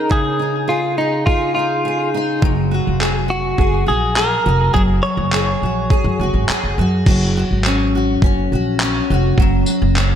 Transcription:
Already playing: steel-string acoustic guitar G#3 D#4 G#4, clean electric guitar A#4
0.09 steel-string acoustic guitar C#3, clean electric guitar G#4, kick
0.39 steel-string acoustic guitar D#4
0.68 clean electric guitar F4, steel-string acoustic guitar G#4
0.98 steel-string acoustic guitar D#4, clean electric guitar D#4
1.26 clean electric guitar F4, steel-string acoustic guitar G#4, kick
1.55 steel-string acoustic guitar D#4, clean electric guitar F4
1.85 steel-string acoustic guitar G#4
2.14 steel-string acoustic guitar D#4
2.42 upright bass F#1, steel-string acoustic guitar F#3, kick
2.71 steel-string acoustic guitar F#4
2.87 upright bass F1
3.00 steel-string acoustic guitar G#4, clap
3.28 steel-string acoustic guitar F#4, clean electric guitar F#4
3.58 upright bass F#1, steel-string acoustic guitar G#4, kick
3.86 upright bass A#1, steel-string acoustic guitar F#4, clean electric guitar G#4
4.16 steel-string acoustic guitar G#4, clean electric guitar A#4, clap
4.46 upright bass F1, steel-string acoustic guitar F#4
4.74 upright bass F#1, steel-string acoustic guitar F#3, clean electric guitar G#4, kick
5.03 clean electric guitar C#5
5.17 upright bass F#1
5.32 steel-string acoustic guitar G#4, clap
5.62 upright bass A#1, steel-string acoustic guitar F#4
5.90 steel-string acoustic guitar G#4, kick
6.04 upright bass F#2
6.19 upright bass F#1, steel-string acoustic guitar F#4
6.34 upright bass G#1
6.49 steel-string acoustic guitar G#4, muted upright bass stroke, clap
6.64 upright bass F#1
6.78 upright bass F#2, steel-string acoustic guitar F#4
7.06 upright bass F#1, steel-string acoustic guitar F#3, kick, crash
7.37 steel-string acoustic guitar F#4
7.51 upright bass G#1
7.64 steel-string acoustic guitar C#4, clap
7.95 steel-string acoustic guitar F#4
8.22 upright bass F#1, steel-string acoustic guitar C#4, kick
8.52 upright bass A#1, steel-string acoustic guitar F#4
8.80 steel-string acoustic guitar C#4, clap
9.10 upright bass F1, steel-string acoustic guitar F#4
9.38 upright bass F#1, steel-string acoustic guitar F#3, kick
9.66 steel-string acoustic guitar F#4, tambourine
9.82 upright bass F#1
9.96 steel-string acoustic guitar C#4, clap

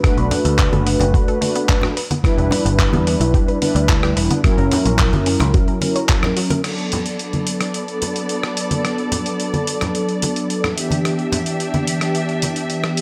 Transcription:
0.03 analog polysynth A3 D4 F#4 B4, synth arpeggio sound A3, muted picked electric bass stroke, kick, cross-stick, closed hi-hat
0.17 picked electric bass B1, synth arpeggio sound B3, closed hi-hat
0.31 synth arpeggio sound D4, open hi-hat, low conga
0.45 picked electric bass D2, synth arpeggio sound A3, closed hi-hat
0.59 synth arpeggio sound A4, kick, clap, closed hi-hat
0.73 picked electric bass F#1, synth arpeggio sound A3, closed hi-hat, high conga
0.87 synth arpeggio sound B3, open hi-hat
0.99 picked electric bass F#1, synth arpeggio sound D4, closed hi-hat, low conga
1.14 synth arpeggio sound F#4, kick, closed hi-hat
1.28 synth arpeggio sound A4, closed hi-hat
1.41 analog polysynth A3 D4 F#4 B4, synth arpeggio sound A3, open hi-hat, high conga
1.55 synth arpeggio sound B3, closed hi-hat
1.69 synth arpeggio sound D4, kick, clap, closed hi-hat
1.81 synth arpeggio sound F#4, cross-stick, closed hi-hat, low conga
1.97 synth arpeggio sound B4, open hi-hat
2.11 synth arpeggio sound B3, closed hi-hat, high conga
2.23 analog polysynth G3 D4 E4 B4, synth arpeggio sound B3, muted picked electric bass stroke, kick, cross-stick, closed hi-hat
2.38 picked electric bass E1, synth arpeggio sound D4, closed hi-hat
2.51 synth arpeggio sound E4, open hi-hat, low conga
2.65 picked electric bass G1, synth arpeggio sound B3, closed hi-hat
2.79 synth arpeggio sound B4, kick, clap, closed hi-hat
2.93 picked electric bass E2, synth arpeggio sound B3, closed hi-hat, high conga
3.07 synth arpeggio sound D4, open hi-hat
3.20 picked electric bass B1, synth arpeggio sound E4, closed hi-hat
3.34 synth arpeggio sound G4, kick, closed hi-hat
3.48 synth arpeggio sound B4, closed hi-hat
3.61 analog polysynth G3 D4 E4 B4, synth arpeggio sound B3, open hi-hat, high conga
3.75 picked electric bass D2, synth arpeggio sound D4, closed hi-hat
3.89 synth arpeggio sound E4, kick, clap, closed hi-hat
4.03 synth arpeggio sound G4, cross-stick, closed hi-hat
4.16 picked electric bass E1, synth arpeggio sound B4, open hi-hat
4.31 synth arpeggio sound B3, closed hi-hat, high conga
4.43 analog polysynth F#3 C#4 E4 A#4, synth arpeggio sound A#3, muted picked electric bass stroke, kick, cross-stick, closed hi-hat
4.58 picked electric bass F#1, synth arpeggio sound C#4, closed hi-hat
4.71 synth arpeggio sound E4, open hi-hat, low conga
4.86 picked electric bass A#1, synth arpeggio sound A#3, closed hi-hat
4.99 synth arpeggio sound A#4, kick, clap, closed hi-hat
5.13 picked electric bass F#2, synth arpeggio sound A#3, closed hi-hat, high conga
5.26 synth arpeggio sound C#4, open hi-hat
5.40 picked electric bass C#2, synth arpeggio sound E4, cross-stick, closed hi-hat, low conga
5.54 synth arpeggio sound F#4, kick, closed hi-hat
5.68 synth arpeggio sound A#4, closed hi-hat
5.81 analog polysynth F#3 C#4 E4 A#4, synth arpeggio sound C#4, open hi-hat, high conga
5.96 synth arpeggio sound C#5, closed hi-hat
6.09 synth arpeggio sound F#4, kick, clap, closed hi-hat
6.23 synth arpeggio sound C#4, cross-stick, closed hi-hat, low conga
6.37 synth arpeggio sound F#4, open hi-hat
6.50 synth arpeggio sound A#4, closed hi-hat, high conga
6.64 analog polysynth F#3 B3 D4 A4, string section B3 A4 D5, cross-stick, closed hi-hat, crash
6.78 closed hi-hat
6.92 closed hi-hat, low conga
7.06 closed hi-hat
7.19 closed hi-hat
7.33 closed hi-hat, high conga
7.47 closed hi-hat
7.61 cross-stick, closed hi-hat
7.74 closed hi-hat
7.88 closed hi-hat
8.02 closed hi-hat, muted conga, high conga
8.16 closed hi-hat
8.29 closed hi-hat
8.43 cross-stick, closed hi-hat
8.57 closed hi-hat
8.71 closed hi-hat, high conga
8.85 cross-stick, closed hi-hat
8.98 closed hi-hat
9.12 closed hi-hat, low conga
9.26 closed hi-hat
9.40 closed hi-hat
9.54 closed hi-hat, high conga
9.67 closed hi-hat
9.81 cross-stick, closed hi-hat, low conga
9.95 closed hi-hat
10.09 closed hi-hat
10.22 closed hi-hat, muted conga, high conga
10.36 closed hi-hat
10.50 closed hi-hat
10.64 cross-stick, closed hi-hat, low conga
10.77 analog polysynth E3 B3 D4 G4, string section D4 G4 E5, closed hi-hat
10.91 closed hi-hat, high conga
11.05 cross-stick, closed hi-hat
11.19 closed hi-hat
11.32 closed hi-hat, low conga
11.46 closed hi-hat
11.60 closed hi-hat
11.74 closed hi-hat, high conga
11.87 closed hi-hat
12.01 cross-stick, closed hi-hat
12.15 closed hi-hat
12.29 closed hi-hat
12.42 closed hi-hat, muted conga, high conga
12.56 closed hi-hat
12.70 closed hi-hat
12.84 cross-stick, closed hi-hat
12.97 closed hi-hat

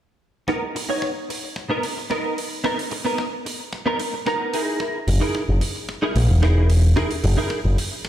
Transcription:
0.48 clean electric guitar B3 D#4 A#4, kick
0.75 muted clean electric guitar stroke, open hi-hat
0.89 clean electric guitar B3 D#4 C#5
1.02 kick
1.29 muted clean electric guitar stroke, open hi-hat
1.56 kick
1.70 clean electric guitar B3 D#4 A#4
1.83 open hi-hat
1.97 muted clean electric guitar stroke
2.10 clean electric guitar B3 D#4 A#4, kick
2.38 open hi-hat
2.64 clean electric guitar B3 D#4 A#4, kick
2.79 open hi-hat
2.91 muted clean electric guitar stroke, open hi-hat
3.05 clean electric guitar B3 D#4 A#4
3.18 kick
3.45 muted clean electric guitar stroke, open hi-hat
3.73 kick
3.86 clean electric guitar B3 D#4 A#4
4.00 open hi-hat
4.13 muted clean electric guitar stroke
4.26 clean electric guitar B3 D#4 A#4 A#5, kick
4.53 clean electric guitar D#4 E4 G#4 A#4, open hi-hat
4.80 kick
5.08 picked electric bass F#1, muted clean electric guitar stroke, open hi-hat
5.21 clean electric guitar D#4 E4 G#4 A#4
5.35 kick
5.49 picked electric bass F#1
5.61 muted clean electric guitar stroke, open hi-hat
5.89 kick
6.02 clean electric guitar D#4 E4 G#4 A#4
6.16 picked electric bass A#1, open hi-hat
6.29 picked electric bass E1, muted clean electric guitar stroke
6.42 clean electric guitar D#4 E4 G#4 A#4, kick
6.70 open hi-hat
6.96 clean electric guitar D#4 E4 G#4 A#4, kick
7.11 open hi-hat
7.24 picked electric bass F#1, muted clean electric guitar stroke, open hi-hat
7.37 clean electric guitar D#4 E4 G#4 A#4
7.50 kick
7.65 picked electric bass F#1
7.77 muted clean electric guitar stroke, open hi-hat
8.05 kick

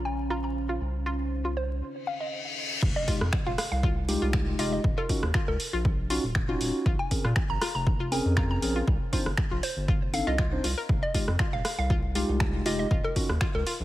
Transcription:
Already playing: analog synth bass A#1, ambient pad C#4 C5
0.05 synth pluck G#5
0.30 synth arpeggio sound F4, synth pluck A#5
0.44 synth pluck A#5
0.69 synth arpeggio sound F4
0.81 analog synth bass C2
1.06 synth arpeggio sound F4
1.45 synth arpeggio sound F4
1.57 synth pluck C5
1.82 reverse cymbal
2.07 synth pluck F5
2.20 synth pluck D#5
2.83 analog synth bass F1, kick, crash, impact
2.96 synth pluck D#5
3.08 tine electric piano G#3 D#4 F4 G4, synth arpeggio sound F4, kick, open hi-hat
3.21 analog synth bass F2, cross-stick
3.33 finger snap, kick
3.46 analog synth bass D#1, synth arpeggio sound F4, synth pluck F5
3.58 synth pluck F5, cross-stick, open hi-hat
3.71 analog synth bass C2, synth pluck F5
3.83 synth arpeggio sound F4, kick
4.08 tine electric piano G#3 D#4 F4 G4, open hi-hat
4.22 analog synth bass C2, synth arpeggio sound F4
4.33 finger snap, kick
4.59 analog synth bass F1, tine electric piano G#3 D#4 F4 G4, synth arpeggio sound F4, synth pluck D#5, open hi-hat
4.73 synth pluck D#5
4.84 analog synth bass D#1, kick
4.98 synth arpeggio sound F4, synth pluck A#4
5.09 tine electric piano C#4 D#4 F4 F#4, kick, open hi-hat
5.23 analog synth bass D#2, cross-stick
5.34 synth arpeggio sound F4, finger snap, kick
5.48 analog synth bass C#2, synth pluck A#4
5.60 open hi-hat
5.73 analog synth bass A#1, synth arpeggio sound F4
5.85 kick
6.10 tine electric piano C#4 D#4 F4 F#4, synth arpeggio sound F4, open hi-hat
6.24 analog synth bass D#1
6.35 finger snap, kick
6.49 tine electric piano C#4 D#4 F4 F#4, synth arpeggio sound F4
6.61 analog synth bass D#1, open hi-hat
6.86 analog synth bass A#1, synth arpeggio sound F4, kick
6.99 synth pluck G#5
7.11 tine electric piano C4 C#4 G#4 A#4, kick, open hi-hat
7.25 analog synth bass A#2, synth arpeggio sound F4, cross-stick
7.36 finger snap, kick
7.50 analog synth bass G#1, synth pluck A#5
7.61 synth arpeggio sound F4, synth pluck A#5, cross-stick, open hi-hat
7.75 analog synth bass F1, synth pluck A#5
7.87 kick
8.00 synth arpeggio sound F4
8.12 tine electric piano C4 C#4 G#4 A#4, synth pluck G#5, open hi-hat
8.25 analog synth bass F2
8.37 synth arpeggio sound F4, synth pluck A#5, finger snap, kick
8.51 synth pluck A#5
8.62 analog synth bass A#1, tine electric piano C4 C#4 G#4 A#4, open hi-hat
8.76 synth arpeggio sound F4
8.88 analog synth bass C2, kick
9.12 tine electric piano C4 D4 D#4 C5, synth arpeggio sound F4, kick, open hi-hat
9.26 analog synth bass G1, cross-stick
9.37 finger snap, kick
9.51 analog synth bass A#1, synth arpeggio sound F4
9.63 synth pluck C5, open hi-hat
9.77 analog synth bass G1
9.88 synth arpeggio sound F4, kick
10.13 tine electric piano C4 D4 D#4 A4, synth pluck F5, open hi-hat
10.27 analog synth bass C2, synth arpeggio sound F4, synth pluck D#5
10.38 synth arpeggio sound F4, finger snap, kick
10.52 tine electric piano C4 D4 D#4 C5
10.64 analog synth bass C2, synth arpeggio sound F4, open hi-hat
10.78 synth arpeggio sound A#4
10.89 analog synth bass F1, kick
11.03 synth pluck D#5
11.14 tine electric piano G#3 D#4 F4 G4, synth arpeggio sound F4, kick, open hi-hat
11.28 analog synth bass F2, cross-stick
11.39 synth arpeggio sound F4, finger snap, kick
11.53 analog synth bass D#1, synth pluck F5
11.65 synth pluck F5, cross-stick, open hi-hat
11.78 analog synth bass C2, synth pluck F5
11.90 synth arpeggio sound F4, kick
12.15 tine electric piano G#3 D#4 F4 G4, synth arpeggio sound F4, open hi-hat
12.29 analog synth bass C2
12.40 finger snap, kick
12.65 analog synth bass F1, tine electric piano G#3 D#4 F4 G4, synth arpeggio sound F4, synth pluck D#5, open hi-hat
12.79 synth pluck D#5
12.91 analog synth bass D#1, synth arpeggio sound F4, kick
13.04 synth pluck A#4
13.16 tine electric piano C#4 D#4 F4 F#4, kick, open hi-hat
13.30 analog synth bass D#2, cross-stick
13.41 synth arpeggio sound F4, finger snap, kick
13.55 analog synth bass C#2, synth pluck A#4
13.67 synth arpeggio sound F4, open hi-hat
13.80 analog synth bass A#1

